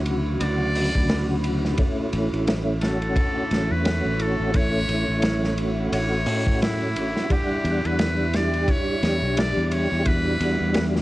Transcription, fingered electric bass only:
0.00 0.37 D2 medium
0.41 0.91 D2 medium
0.95 1.76 D2 medium
2.13 2.30 A1 loud
2.32 3.13 A1 medium
3.51 3.68 A1 medium
3.71 4.00 E2 medium
4.05 4.35 A1 medium
4.40 4.86 A1 medium
4.89 5.06 A1 medium
5.08 5.89 A1 medium
5.92 6.26 A1 medium
6.26 6.96 A2 medium
6.96 7.13 A1 medium
7.64 7.82 E2 medium
7.85 8.65 E2 medium
9.03 9.20 E2 medium
9.22 9.52 B1 medium
9.57 9.86 E2 medium
9.92 10.38 E2 medium
10.40 10.58 E2 loud
10.60 11.02 E2 medium

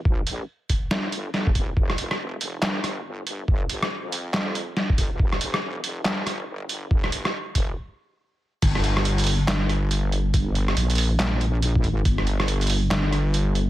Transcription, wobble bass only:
0.00 0.47 A#1 loud
0.91 1.33 G1 medium
1.34 1.75 G1 loud
1.77 2.61 F1 loud
2.62 3.90 G1 medium
3.91 4.75 F2 loud
4.98 5.18 G1 loud
5.20 6.04 F1 loud
6.05 7.32 G1 loud
7.55 7.77 F1 loud
8.62 9.47 G1 loud
9.48 10.75 G1 loud
10.77 11.18 A#1 medium
11.20 11.80 A#1 medium
11.80 12.04 A1 medium
12.05 12.90 G1 loud
12.91 13.70 G1 medium

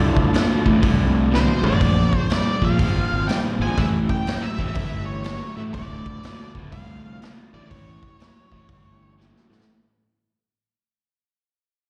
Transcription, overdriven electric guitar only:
0.00 0.30 D2 medium
0.00 0.30 A2 medium
0.33 0.62 D2 medium
0.33 0.62 B2 medium
0.65 0.80 D2 medium
0.65 0.81 A2 medium
0.81 1.28 D2 medium
0.81 1.28 A2 medium
1.31 1.61 D2 medium
1.31 1.61 B2 medium
1.63 1.79 D2 medium
1.63 1.80 A2 medium
1.80 2.27 A#2 medium
1.80 2.27 F3 medium
2.30 2.59 A#2 medium
2.30 2.59 G3 medium
2.62 2.78 A#2 medium
2.62 2.78 F3 medium
2.79 3.25 A#2 medium
2.79 3.26 F3 medium
3.29 3.58 A#2 medium
3.29 3.58 G3 medium
3.61 3.76 A#2 medium
3.61 3.77 F3 medium
3.78 4.24 A2 medium
3.78 4.24 E3 medium
4.27 4.56 A2 medium
4.27 4.56 F#3 medium
4.59 4.75 A2 medium
4.59 4.75 E3 medium
4.76 5.22 A2 medium
4.76 5.22 E3 medium
5.25 5.54 A2 medium
5.25 5.54 F#3 medium
5.58 5.73 A2 medium
5.58 5.73 E3 medium
5.75 6.20 D2 medium
5.75 6.20 A2 medium
6.23 6.52 D2 medium
6.23 6.52 B2 medium
6.55 6.71 D2 medium
6.55 6.71 A2 medium
6.72 7.18 D2 medium
6.72 7.18 A2 medium
7.22 7.50 D2 medium
7.22 7.51 B2 medium
7.54 7.69 D2 medium
7.54 7.69 A2 medium
7.71 8.16 A2 medium
7.71 8.17 E3 medium
8.19 8.48 A2 medium
8.19 8.48 F#3 medium
8.52 8.67 A2 medium
8.52 8.67 E3 medium
8.69 9.14 A2 medium
8.69 9.14 E3 medium
9.18 9.47 A2 medium
9.18 9.47 F#3 medium
9.50 9.65 A2 medium
9.50 9.65 E3 medium

